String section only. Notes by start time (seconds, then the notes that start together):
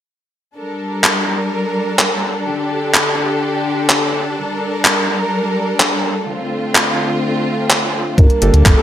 0.56 G3 D4 A4 A#4
2.47 D3 G4
4.37 G3 A#4
6.28 D3 A3 C4 F4
8.18 G3 A#3 D4 A5